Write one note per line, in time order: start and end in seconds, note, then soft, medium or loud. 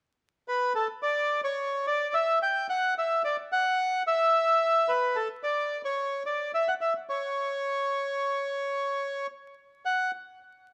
0.48 0.73 B4 medium
0.75 0.87 A4 medium
1.02 1.41 D5 medium
1.44 1.86 C#5 medium
1.87 2.14 D5 medium
2.14 2.39 E5 medium
2.43 2.67 G5 medium
2.69 2.94 F#5 medium
2.98 3.22 E5 medium
3.25 3.36 D5 medium
3.52 4.02 F#5 medium
4.07 4.91 E5 medium
4.88 5.16 B4 medium
5.16 5.28 A4 medium
5.43 5.82 D5 medium
5.85 6.23 C#5 medium
6.26 6.51 D5 medium
6.54 6.68 E5 medium
6.68 6.74 F#5 medium
6.81 6.93 E5 medium
7.09 9.27 C#5 medium
9.85 10.11 F#5 medium